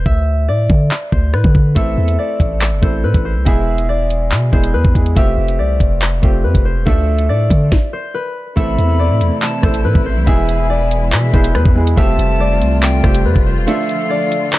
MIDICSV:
0, 0, Header, 1, 7, 480
1, 0, Start_track
1, 0, Key_signature, 0, "minor"
1, 0, Tempo, 425532
1, 67, Time_signature, 4, 2, 24, 8
1, 16454, End_track
2, 0, Start_track
2, 0, Title_t, "Flute"
2, 0, Program_c, 0, 73
2, 9660, Note_on_c, 0, 83, 124
2, 10578, Note_off_c, 0, 83, 0
2, 10627, Note_on_c, 0, 81, 93
2, 11078, Note_off_c, 0, 81, 0
2, 11586, Note_on_c, 0, 80, 97
2, 12501, Note_off_c, 0, 80, 0
2, 12548, Note_on_c, 0, 76, 94
2, 12998, Note_off_c, 0, 76, 0
2, 13510, Note_on_c, 0, 81, 121
2, 14423, Note_off_c, 0, 81, 0
2, 14466, Note_on_c, 0, 79, 102
2, 14917, Note_off_c, 0, 79, 0
2, 15429, Note_on_c, 0, 77, 120
2, 16454, Note_off_c, 0, 77, 0
2, 16454, End_track
3, 0, Start_track
3, 0, Title_t, "Harp"
3, 0, Program_c, 1, 46
3, 0, Note_on_c, 1, 72, 83
3, 0, Note_on_c, 1, 74, 90
3, 67, Note_on_c, 1, 76, 101
3, 542, Note_off_c, 1, 74, 0
3, 547, Note_on_c, 1, 74, 87
3, 1261, Note_off_c, 1, 72, 0
3, 1265, Note_on_c, 1, 72, 84
3, 1507, Note_on_c, 1, 71, 90
3, 1574, Note_off_c, 1, 72, 0
3, 1983, Note_off_c, 1, 76, 0
3, 1988, Note_on_c, 1, 76, 110
3, 2462, Note_off_c, 1, 74, 0
3, 2467, Note_on_c, 1, 74, 90
3, 3187, Note_on_c, 1, 72, 73
3, 3255, Note_off_c, 1, 71, 0
3, 3428, Note_on_c, 1, 71, 83
3, 3495, Note_off_c, 1, 72, 0
3, 3667, Note_on_c, 1, 72, 84
3, 3734, Note_off_c, 1, 71, 0
3, 3903, Note_off_c, 1, 76, 0
3, 3907, Note_on_c, 1, 76, 103
3, 4383, Note_off_c, 1, 74, 0
3, 4388, Note_on_c, 1, 74, 86
3, 5102, Note_off_c, 1, 72, 0
3, 5107, Note_on_c, 1, 72, 86
3, 5345, Note_on_c, 1, 71, 95
3, 5413, Note_off_c, 1, 72, 0
3, 5821, Note_off_c, 1, 76, 0
3, 5825, Note_on_c, 1, 76, 114
3, 6300, Note_off_c, 1, 74, 0
3, 6305, Note_on_c, 1, 74, 91
3, 7026, Note_on_c, 1, 72, 71
3, 7094, Note_off_c, 1, 71, 0
3, 7265, Note_on_c, 1, 71, 84
3, 7333, Note_off_c, 1, 72, 0
3, 7504, Note_on_c, 1, 72, 78
3, 7572, Note_off_c, 1, 71, 0
3, 7740, Note_off_c, 1, 76, 0
3, 7745, Note_on_c, 1, 76, 104
3, 8221, Note_off_c, 1, 74, 0
3, 8225, Note_on_c, 1, 74, 88
3, 8942, Note_off_c, 1, 72, 0
3, 8946, Note_on_c, 1, 72, 87
3, 9187, Note_on_c, 1, 71, 94
3, 9254, Note_off_c, 1, 72, 0
3, 9662, Note_off_c, 1, 76, 0
3, 9667, Note_on_c, 1, 76, 117
3, 10142, Note_off_c, 1, 74, 0
3, 10146, Note_on_c, 1, 74, 89
3, 10867, Note_on_c, 1, 72, 74
3, 10934, Note_off_c, 1, 71, 0
3, 11107, Note_on_c, 1, 71, 84
3, 11175, Note_off_c, 1, 72, 0
3, 11345, Note_on_c, 1, 72, 88
3, 11413, Note_off_c, 1, 71, 0
3, 11582, Note_off_c, 1, 76, 0
3, 11586, Note_on_c, 1, 76, 103
3, 12062, Note_off_c, 1, 74, 0
3, 12067, Note_on_c, 1, 74, 89
3, 12784, Note_off_c, 1, 72, 0
3, 12788, Note_on_c, 1, 72, 88
3, 13029, Note_on_c, 1, 71, 93
3, 13096, Note_off_c, 1, 72, 0
3, 13504, Note_off_c, 1, 76, 0
3, 13509, Note_on_c, 1, 76, 118
3, 13985, Note_off_c, 1, 74, 0
3, 13989, Note_on_c, 1, 74, 92
3, 14709, Note_on_c, 1, 72, 73
3, 14777, Note_off_c, 1, 71, 0
3, 14949, Note_on_c, 1, 71, 87
3, 15017, Note_off_c, 1, 72, 0
3, 15187, Note_on_c, 1, 72, 80
3, 15255, Note_off_c, 1, 71, 0
3, 15423, Note_off_c, 1, 76, 0
3, 15427, Note_on_c, 1, 76, 104
3, 15903, Note_off_c, 1, 74, 0
3, 15908, Note_on_c, 1, 74, 89
3, 16454, Note_off_c, 1, 72, 0
3, 16454, Note_off_c, 1, 74, 0
3, 16454, Note_off_c, 1, 76, 0
3, 16454, End_track
4, 0, Start_track
4, 0, Title_t, "Grand piano"
4, 0, Program_c, 2, 0
4, 1974, Note_on_c, 2, 57, 98
4, 1983, Note_on_c, 2, 60, 88
4, 1991, Note_on_c, 2, 64, 84
4, 2001, Note_on_c, 2, 69, 108
4, 2184, Control_c, 2, 64, 127
4, 2841, Note_off_c, 2, 57, 0
4, 2846, Note_off_c, 2, 60, 0
4, 2850, Note_off_c, 2, 64, 0
4, 2854, Note_off_c, 2, 69, 0
4, 3174, Note_on_c, 2, 57, 78
4, 3183, Note_on_c, 2, 60, 77
4, 3192, Note_on_c, 2, 64, 70
4, 3201, Note_on_c, 2, 69, 84
4, 3826, Note_off_c, 2, 57, 0
4, 3831, Note_off_c, 2, 60, 0
4, 3835, Note_off_c, 2, 64, 0
4, 3839, Note_off_c, 2, 69, 0
4, 3895, Note_on_c, 2, 56, 88
4, 3903, Note_on_c, 2, 59, 84
4, 3912, Note_on_c, 2, 64, 94
4, 3921, Note_on_c, 2, 68, 113
4, 3922, Control_c, 2, 64, 0
4, 4150, Control_c, 2, 64, 127
4, 4762, Note_off_c, 2, 56, 0
4, 4766, Note_off_c, 2, 59, 0
4, 4770, Note_off_c, 2, 64, 0
4, 4775, Note_off_c, 2, 68, 0
4, 5095, Note_on_c, 2, 56, 75
4, 5103, Note_on_c, 2, 59, 71
4, 5112, Note_on_c, 2, 64, 71
4, 5122, Note_on_c, 2, 68, 88
4, 5531, Note_off_c, 2, 56, 0
4, 5535, Note_off_c, 2, 59, 0
4, 5540, Note_off_c, 2, 64, 0
4, 5545, Note_off_c, 2, 68, 0
4, 5575, Note_on_c, 2, 56, 71
4, 5583, Note_on_c, 2, 59, 67
4, 5592, Note_on_c, 2, 64, 65
4, 5601, Note_on_c, 2, 68, 79
4, 5796, Note_off_c, 2, 56, 0
4, 5800, Note_off_c, 2, 59, 0
4, 5805, Note_off_c, 2, 64, 0
4, 5809, Note_off_c, 2, 68, 0
4, 5813, Note_on_c, 2, 57, 92
4, 5822, Note_on_c, 2, 60, 89
4, 5831, Note_on_c, 2, 65, 86
4, 5839, Control_c, 2, 64, 0
4, 5839, Note_on_c, 2, 67, 108
4, 6058, Control_c, 2, 64, 127
4, 6681, Note_off_c, 2, 57, 0
4, 6685, Note_off_c, 2, 60, 0
4, 6689, Note_off_c, 2, 65, 0
4, 6694, Note_off_c, 2, 67, 0
4, 7013, Note_on_c, 2, 57, 77
4, 7022, Note_on_c, 2, 60, 72
4, 7030, Note_on_c, 2, 65, 75
4, 7040, Note_on_c, 2, 67, 84
4, 7666, Note_off_c, 2, 57, 0
4, 7670, Note_off_c, 2, 60, 0
4, 7674, Note_off_c, 2, 65, 0
4, 7679, Note_off_c, 2, 67, 0
4, 7733, Note_on_c, 2, 57, 98
4, 7742, Note_on_c, 2, 62, 93
4, 7751, Note_on_c, 2, 65, 84
4, 7760, Control_c, 2, 64, 0
4, 7760, Note_on_c, 2, 69, 106
4, 7945, Control_c, 2, 64, 127
4, 8601, Note_off_c, 2, 57, 0
4, 8605, Note_off_c, 2, 62, 0
4, 8610, Note_off_c, 2, 65, 0
4, 8614, Note_off_c, 2, 69, 0
4, 8719, Control_c, 2, 64, 0
4, 9653, Note_on_c, 2, 57, 97
4, 9662, Note_on_c, 2, 60, 93
4, 9671, Note_on_c, 2, 64, 84
4, 9679, Note_on_c, 2, 69, 109
4, 9901, Control_c, 2, 64, 127
4, 10521, Note_off_c, 2, 57, 0
4, 10525, Note_off_c, 2, 60, 0
4, 10530, Note_off_c, 2, 64, 0
4, 10534, Note_off_c, 2, 69, 0
4, 10853, Note_on_c, 2, 57, 78
4, 10862, Note_on_c, 2, 60, 81
4, 10871, Note_on_c, 2, 64, 74
4, 10880, Note_on_c, 2, 69, 86
4, 11506, Note_off_c, 2, 57, 0
4, 11510, Note_off_c, 2, 60, 0
4, 11514, Note_off_c, 2, 64, 0
4, 11519, Note_off_c, 2, 69, 0
4, 11574, Note_on_c, 2, 56, 91
4, 11583, Note_on_c, 2, 59, 88
4, 11592, Note_on_c, 2, 64, 97
4, 11601, Note_on_c, 2, 68, 119
4, 11602, Control_c, 2, 64, 0
4, 11782, Control_c, 2, 64, 127
4, 12441, Note_off_c, 2, 56, 0
4, 12446, Note_off_c, 2, 59, 0
4, 12450, Note_off_c, 2, 64, 0
4, 12454, Note_off_c, 2, 68, 0
4, 12773, Note_on_c, 2, 56, 79
4, 12783, Note_on_c, 2, 59, 79
4, 12791, Note_on_c, 2, 64, 74
4, 12800, Note_on_c, 2, 68, 90
4, 13210, Note_off_c, 2, 56, 0
4, 13215, Note_off_c, 2, 59, 0
4, 13219, Note_off_c, 2, 64, 0
4, 13224, Note_off_c, 2, 68, 0
4, 13253, Note_on_c, 2, 56, 73
4, 13262, Note_on_c, 2, 59, 70
4, 13271, Note_on_c, 2, 64, 65
4, 13279, Note_on_c, 2, 68, 83
4, 13475, Note_off_c, 2, 56, 0
4, 13480, Note_off_c, 2, 59, 0
4, 13484, Note_off_c, 2, 64, 0
4, 13488, Note_off_c, 2, 68, 0
4, 13492, Note_on_c, 2, 57, 94
4, 13501, Note_on_c, 2, 60, 98
4, 13510, Note_on_c, 2, 65, 90
4, 13520, Control_c, 2, 64, 0
4, 13520, Note_on_c, 2, 67, 116
4, 13733, Control_c, 2, 64, 127
4, 14360, Note_off_c, 2, 57, 0
4, 14365, Note_off_c, 2, 60, 0
4, 14369, Note_off_c, 2, 65, 0
4, 14374, Note_off_c, 2, 67, 0
4, 14694, Note_on_c, 2, 57, 80
4, 14703, Note_on_c, 2, 60, 76
4, 14711, Note_on_c, 2, 65, 73
4, 14720, Note_on_c, 2, 67, 91
4, 15346, Note_off_c, 2, 57, 0
4, 15350, Note_off_c, 2, 60, 0
4, 15354, Note_off_c, 2, 65, 0
4, 15359, Note_off_c, 2, 67, 0
4, 15414, Note_on_c, 2, 57, 101
4, 15423, Note_on_c, 2, 62, 95
4, 15431, Note_on_c, 2, 65, 85
4, 15440, Note_on_c, 2, 69, 109
4, 15443, Control_c, 2, 64, 0
4, 15629, Control_c, 2, 64, 127
4, 16281, Note_off_c, 2, 57, 0
4, 16286, Note_off_c, 2, 62, 0
4, 16290, Note_off_c, 2, 65, 0
4, 16294, Note_off_c, 2, 69, 0
4, 16454, End_track
5, 0, Start_track
5, 0, Title_t, "String section"
5, 0, Program_c, 3, 48
5, 9665, Note_on_c, 3, 64, 97
5, 9666, Note_on_c, 3, 48, 84
5, 9666, Note_on_c, 3, 52, 76
5, 9666, Note_on_c, 3, 57, 77
5, 11567, Note_off_c, 3, 48, 0
5, 11567, Note_off_c, 3, 57, 0
5, 11586, Note_on_c, 3, 56, 80
5, 11587, Note_on_c, 3, 47, 83
5, 13468, Note_off_c, 3, 52, 0
5, 13468, Note_off_c, 3, 64, 0
5, 13487, Note_off_c, 3, 56, 0
5, 13488, Note_off_c, 3, 47, 0
5, 13507, Note_on_c, 3, 48, 85
5, 13507, Note_on_c, 3, 55, 79
5, 13507, Note_on_c, 3, 57, 75
5, 13507, Note_on_c, 3, 65, 96
5, 15407, Note_off_c, 3, 57, 0
5, 15408, Note_off_c, 3, 48, 0
5, 15408, Note_off_c, 3, 55, 0
5, 15428, Note_on_c, 3, 50, 83
5, 15428, Note_on_c, 3, 53, 77
5, 15428, Note_on_c, 3, 57, 78
5, 16454, Note_off_c, 3, 50, 0
5, 16454, Note_off_c, 3, 53, 0
5, 16454, Note_off_c, 3, 57, 0
5, 16454, Note_off_c, 3, 65, 0
5, 16454, End_track
6, 0, Start_track
6, 0, Title_t, "808-style bass"
6, 0, Program_c, 4, 38
6, 67, Note_on_c, 4, 38, 110
6, 546, Note_on_c, 4, 45, 94
6, 563, Note_off_c, 4, 38, 0
6, 774, Note_off_c, 4, 45, 0
6, 786, Note_on_c, 4, 50, 109
6, 1017, Note_off_c, 4, 50, 0
6, 1268, Note_on_c, 4, 38, 107
6, 1508, Note_on_c, 4, 45, 102
6, 1525, Note_off_c, 4, 38, 0
6, 1621, Note_off_c, 4, 45, 0
6, 1626, Note_on_c, 4, 50, 105
6, 1972, Note_off_c, 4, 50, 0
6, 1987, Note_on_c, 4, 33, 110
6, 2217, Note_off_c, 4, 33, 0
6, 2228, Note_on_c, 4, 40, 108
6, 2458, Note_off_c, 4, 40, 0
6, 2707, Note_on_c, 4, 33, 112
6, 3068, Note_on_c, 4, 31, 97
6, 3085, Note_off_c, 4, 33, 0
6, 3181, Note_off_c, 4, 31, 0
6, 3188, Note_on_c, 4, 33, 110
6, 3427, Note_on_c, 4, 45, 101
6, 3444, Note_off_c, 4, 33, 0
6, 3541, Note_off_c, 4, 45, 0
6, 3546, Note_on_c, 4, 33, 113
6, 3788, Note_on_c, 4, 36, 96
6, 3805, Note_off_c, 4, 33, 0
6, 3901, Note_off_c, 4, 36, 0
6, 3908, Note_on_c, 4, 28, 107
6, 4867, Note_on_c, 4, 47, 100
6, 4884, Note_off_c, 4, 28, 0
6, 5095, Note_off_c, 4, 47, 0
6, 5108, Note_on_c, 4, 28, 109
6, 5347, Note_on_c, 4, 40, 99
6, 5364, Note_off_c, 4, 28, 0
6, 5461, Note_off_c, 4, 40, 0
6, 5466, Note_on_c, 4, 40, 105
6, 5582, Note_off_c, 4, 40, 0
6, 5587, Note_on_c, 4, 40, 103
6, 5817, Note_off_c, 4, 40, 0
6, 5827, Note_on_c, 4, 29, 116
6, 6057, Note_off_c, 4, 29, 0
6, 6067, Note_on_c, 4, 29, 102
6, 6307, Note_on_c, 4, 36, 97
6, 6324, Note_off_c, 4, 29, 0
6, 6535, Note_off_c, 4, 36, 0
6, 6545, Note_on_c, 4, 29, 105
6, 7007, Note_off_c, 4, 29, 0
6, 7027, Note_on_c, 4, 29, 112
6, 7266, Note_on_c, 4, 41, 104
6, 7283, Note_off_c, 4, 29, 0
6, 7381, Note_off_c, 4, 41, 0
6, 7385, Note_on_c, 4, 29, 107
6, 7627, Note_on_c, 4, 28, 99
6, 7644, Note_off_c, 4, 29, 0
6, 7741, Note_off_c, 4, 28, 0
6, 7746, Note_on_c, 4, 38, 108
6, 8227, Note_on_c, 4, 45, 100
6, 8243, Note_off_c, 4, 38, 0
6, 8455, Note_off_c, 4, 45, 0
6, 8465, Note_on_c, 4, 50, 105
6, 8696, Note_off_c, 4, 50, 0
6, 9666, Note_on_c, 4, 33, 112
6, 9897, Note_off_c, 4, 33, 0
6, 9906, Note_on_c, 4, 40, 109
6, 10267, Note_on_c, 4, 45, 98
6, 10284, Note_off_c, 4, 40, 0
6, 10387, Note_on_c, 4, 40, 103
6, 10404, Note_off_c, 4, 45, 0
6, 10501, Note_off_c, 4, 40, 0
6, 10867, Note_on_c, 4, 33, 113
6, 11106, Note_on_c, 4, 45, 101
6, 11123, Note_off_c, 4, 33, 0
6, 11220, Note_off_c, 4, 45, 0
6, 11226, Note_on_c, 4, 33, 108
6, 11466, Note_on_c, 4, 36, 101
6, 11483, Note_off_c, 4, 33, 0
6, 11580, Note_off_c, 4, 36, 0
6, 11586, Note_on_c, 4, 28, 112
6, 12547, Note_on_c, 4, 47, 101
6, 12564, Note_off_c, 4, 28, 0
6, 12775, Note_off_c, 4, 47, 0
6, 12788, Note_on_c, 4, 28, 111
6, 13027, Note_on_c, 4, 40, 104
6, 13044, Note_off_c, 4, 28, 0
6, 13141, Note_off_c, 4, 40, 0
6, 13146, Note_on_c, 4, 40, 103
6, 13492, Note_off_c, 4, 40, 0
6, 13507, Note_on_c, 4, 29, 114
6, 13737, Note_off_c, 4, 29, 0
6, 13747, Note_on_c, 4, 29, 108
6, 14227, Note_on_c, 4, 36, 101
6, 14244, Note_off_c, 4, 29, 0
6, 14683, Note_off_c, 4, 36, 0
6, 14709, Note_on_c, 4, 29, 111
6, 14947, Note_on_c, 4, 41, 102
6, 14964, Note_off_c, 4, 29, 0
6, 15061, Note_off_c, 4, 41, 0
6, 15067, Note_on_c, 4, 29, 114
6, 15307, Note_on_c, 4, 28, 101
6, 15323, Note_off_c, 4, 29, 0
6, 15421, Note_off_c, 4, 28, 0
6, 16454, End_track
7, 0, Start_track
7, 0, Title_t, "Drums"
7, 67, Note_on_c, 9, 36, 111
7, 180, Note_off_c, 9, 36, 0
7, 786, Note_on_c, 9, 36, 99
7, 899, Note_off_c, 9, 36, 0
7, 1028, Note_on_c, 9, 39, 108
7, 1140, Note_off_c, 9, 39, 0
7, 1268, Note_on_c, 9, 36, 89
7, 1381, Note_off_c, 9, 36, 0
7, 1508, Note_on_c, 9, 37, 91
7, 1620, Note_off_c, 9, 37, 0
7, 1626, Note_on_c, 9, 36, 92
7, 1739, Note_off_c, 9, 36, 0
7, 1747, Note_on_c, 9, 36, 97
7, 1860, Note_off_c, 9, 36, 0
7, 1987, Note_on_c, 9, 36, 115
7, 1987, Note_on_c, 9, 42, 86
7, 2100, Note_off_c, 9, 36, 0
7, 2100, Note_off_c, 9, 42, 0
7, 2346, Note_on_c, 9, 42, 81
7, 2459, Note_off_c, 9, 42, 0
7, 2706, Note_on_c, 9, 36, 96
7, 2710, Note_on_c, 9, 42, 85
7, 2819, Note_off_c, 9, 36, 0
7, 2823, Note_off_c, 9, 42, 0
7, 2948, Note_on_c, 9, 39, 111
7, 2948, Note_on_c, 9, 42, 73
7, 3061, Note_off_c, 9, 39, 0
7, 3061, Note_off_c, 9, 42, 0
7, 3188, Note_on_c, 9, 36, 92
7, 3188, Note_on_c, 9, 42, 72
7, 3301, Note_off_c, 9, 36, 0
7, 3301, Note_off_c, 9, 42, 0
7, 3546, Note_on_c, 9, 42, 80
7, 3547, Note_on_c, 9, 36, 93
7, 3659, Note_off_c, 9, 36, 0
7, 3659, Note_off_c, 9, 42, 0
7, 3907, Note_on_c, 9, 36, 109
7, 3907, Note_on_c, 9, 42, 84
7, 4020, Note_off_c, 9, 36, 0
7, 4020, Note_off_c, 9, 42, 0
7, 4266, Note_on_c, 9, 42, 83
7, 4379, Note_off_c, 9, 42, 0
7, 4630, Note_on_c, 9, 42, 82
7, 4742, Note_off_c, 9, 42, 0
7, 4867, Note_on_c, 9, 42, 70
7, 4868, Note_on_c, 9, 39, 107
7, 4980, Note_off_c, 9, 42, 0
7, 4981, Note_off_c, 9, 39, 0
7, 5108, Note_on_c, 9, 36, 90
7, 5221, Note_off_c, 9, 36, 0
7, 5228, Note_on_c, 9, 42, 83
7, 5340, Note_off_c, 9, 42, 0
7, 5466, Note_on_c, 9, 36, 93
7, 5579, Note_off_c, 9, 36, 0
7, 5587, Note_on_c, 9, 36, 95
7, 5589, Note_on_c, 9, 42, 86
7, 5699, Note_off_c, 9, 36, 0
7, 5702, Note_off_c, 9, 42, 0
7, 5709, Note_on_c, 9, 42, 81
7, 5821, Note_off_c, 9, 42, 0
7, 5827, Note_on_c, 9, 36, 111
7, 5827, Note_on_c, 9, 42, 85
7, 5939, Note_off_c, 9, 42, 0
7, 5940, Note_off_c, 9, 36, 0
7, 6186, Note_on_c, 9, 42, 83
7, 6298, Note_off_c, 9, 42, 0
7, 6546, Note_on_c, 9, 36, 99
7, 6549, Note_on_c, 9, 42, 82
7, 6658, Note_off_c, 9, 36, 0
7, 6662, Note_off_c, 9, 42, 0
7, 6786, Note_on_c, 9, 42, 76
7, 6787, Note_on_c, 9, 39, 111
7, 6899, Note_off_c, 9, 42, 0
7, 6900, Note_off_c, 9, 39, 0
7, 7027, Note_on_c, 9, 36, 89
7, 7027, Note_on_c, 9, 42, 72
7, 7140, Note_off_c, 9, 36, 0
7, 7140, Note_off_c, 9, 42, 0
7, 7385, Note_on_c, 9, 36, 91
7, 7385, Note_on_c, 9, 42, 82
7, 7498, Note_off_c, 9, 36, 0
7, 7498, Note_off_c, 9, 42, 0
7, 7745, Note_on_c, 9, 42, 84
7, 7746, Note_on_c, 9, 36, 111
7, 7858, Note_off_c, 9, 42, 0
7, 7859, Note_off_c, 9, 36, 0
7, 8105, Note_on_c, 9, 42, 84
7, 8218, Note_off_c, 9, 42, 0
7, 8465, Note_on_c, 9, 36, 97
7, 8468, Note_on_c, 9, 42, 84
7, 8578, Note_off_c, 9, 36, 0
7, 8581, Note_off_c, 9, 42, 0
7, 8706, Note_on_c, 9, 36, 107
7, 8706, Note_on_c, 9, 38, 91
7, 8819, Note_off_c, 9, 36, 0
7, 8819, Note_off_c, 9, 38, 0
7, 9666, Note_on_c, 9, 36, 113
7, 9666, Note_on_c, 9, 42, 86
7, 9779, Note_off_c, 9, 36, 0
7, 9779, Note_off_c, 9, 42, 0
7, 9909, Note_on_c, 9, 42, 65
7, 10022, Note_off_c, 9, 42, 0
7, 10389, Note_on_c, 9, 42, 85
7, 10501, Note_off_c, 9, 42, 0
7, 10626, Note_on_c, 9, 42, 75
7, 10627, Note_on_c, 9, 39, 115
7, 10739, Note_off_c, 9, 42, 0
7, 10740, Note_off_c, 9, 39, 0
7, 10865, Note_on_c, 9, 37, 89
7, 10866, Note_on_c, 9, 42, 73
7, 10867, Note_on_c, 9, 36, 93
7, 10978, Note_off_c, 9, 37, 0
7, 10979, Note_off_c, 9, 42, 0
7, 10980, Note_off_c, 9, 36, 0
7, 10986, Note_on_c, 9, 42, 85
7, 11099, Note_off_c, 9, 42, 0
7, 11226, Note_on_c, 9, 36, 96
7, 11338, Note_off_c, 9, 36, 0
7, 11586, Note_on_c, 9, 36, 114
7, 11586, Note_on_c, 9, 42, 84
7, 11699, Note_off_c, 9, 36, 0
7, 11699, Note_off_c, 9, 42, 0
7, 11828, Note_on_c, 9, 42, 67
7, 11941, Note_off_c, 9, 42, 0
7, 12309, Note_on_c, 9, 42, 86
7, 12422, Note_off_c, 9, 42, 0
7, 12547, Note_on_c, 9, 39, 115
7, 12547, Note_on_c, 9, 42, 77
7, 12659, Note_off_c, 9, 42, 0
7, 12660, Note_off_c, 9, 39, 0
7, 12787, Note_on_c, 9, 42, 72
7, 12788, Note_on_c, 9, 36, 95
7, 12900, Note_off_c, 9, 36, 0
7, 12900, Note_off_c, 9, 42, 0
7, 12906, Note_on_c, 9, 42, 86
7, 13019, Note_off_c, 9, 42, 0
7, 13027, Note_on_c, 9, 37, 91
7, 13028, Note_on_c, 9, 42, 64
7, 13140, Note_off_c, 9, 37, 0
7, 13141, Note_off_c, 9, 42, 0
7, 13146, Note_on_c, 9, 36, 97
7, 13259, Note_off_c, 9, 36, 0
7, 13389, Note_on_c, 9, 42, 80
7, 13502, Note_off_c, 9, 42, 0
7, 13507, Note_on_c, 9, 42, 88
7, 13508, Note_on_c, 9, 36, 114
7, 13620, Note_off_c, 9, 36, 0
7, 13620, Note_off_c, 9, 42, 0
7, 13750, Note_on_c, 9, 42, 67
7, 13863, Note_off_c, 9, 42, 0
7, 14230, Note_on_c, 9, 42, 82
7, 14343, Note_off_c, 9, 42, 0
7, 14468, Note_on_c, 9, 39, 109
7, 14468, Note_on_c, 9, 42, 76
7, 14581, Note_off_c, 9, 39, 0
7, 14581, Note_off_c, 9, 42, 0
7, 14707, Note_on_c, 9, 37, 93
7, 14709, Note_on_c, 9, 36, 91
7, 14709, Note_on_c, 9, 42, 74
7, 14820, Note_off_c, 9, 37, 0
7, 14821, Note_off_c, 9, 36, 0
7, 14821, Note_off_c, 9, 42, 0
7, 14828, Note_on_c, 9, 42, 87
7, 14941, Note_off_c, 9, 42, 0
7, 15067, Note_on_c, 9, 36, 96
7, 15180, Note_off_c, 9, 36, 0
7, 15428, Note_on_c, 9, 42, 87
7, 15541, Note_off_c, 9, 42, 0
7, 15670, Note_on_c, 9, 42, 65
7, 15783, Note_off_c, 9, 42, 0
7, 16150, Note_on_c, 9, 42, 87
7, 16262, Note_off_c, 9, 42, 0
7, 16387, Note_on_c, 9, 39, 115
7, 16387, Note_on_c, 9, 42, 75
7, 16454, Note_off_c, 9, 39, 0
7, 16454, Note_off_c, 9, 42, 0
7, 16454, End_track
0, 0, End_of_file